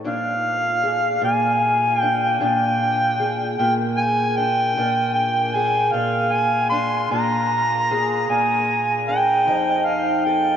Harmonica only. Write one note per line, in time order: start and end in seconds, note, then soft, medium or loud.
0.07 1.20 F5 loud
1.24 1.98 G#5 medium
1.98 2.43 G5 medium
2.43 3.57 G5 loud
3.58 3.74 G5 medium
3.97 4.38 G#5 medium
4.36 5.13 G5 loud
5.13 5.56 G5 medium
5.55 5.93 G#5 medium
5.92 6.34 F5 medium
6.32 6.69 G#5 loud
6.69 7.07 C6 loud
7.11 8.25 A#5 loud
8.29 9.03 G#5 medium
9.09 9.88 G5 loud
9.86 10.27 F5 medium
10.25 10.57 G5 medium